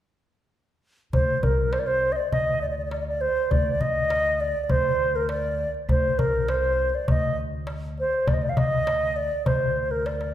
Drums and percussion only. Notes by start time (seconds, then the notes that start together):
1.13 darbuka dum
1.43 darbuka dum
1.73 darbuka tek
1.88 darbuka ka
2.18 darbuka ka
2.33 darbuka dum
2.47 darbuka ka
2.62 darbuka ka
2.91 darbuka tek
3.22 darbuka ka
3.36 darbuka ka
3.51 darbuka dum
3.81 darbuka dum
4.10 darbuka tek
4.26 darbuka ka
4.55 darbuka ka
4.69 darbuka dum
4.85 darbuka ka
5.00 darbuka ka
5.29 darbuka tek
5.59 darbuka ka
5.74 darbuka ka
5.89 darbuka dum
6.19 darbuka dum
6.48 darbuka tek
6.63 darbuka ka
6.93 darbuka ka
7.08 darbuka dum
7.23 darbuka ka
7.67 darbuka tek
7.98 darbuka ka
8.13 darbuka ka
8.28 darbuka dum
8.57 darbuka dum
8.87 darbuka tek
9.02 darbuka ka
9.17 darbuka ka
9.31 darbuka ka
9.46 darbuka dum
9.62 darbuka ka
9.76 darbuka ka
10.06 darbuka tek
10.21 darbuka ka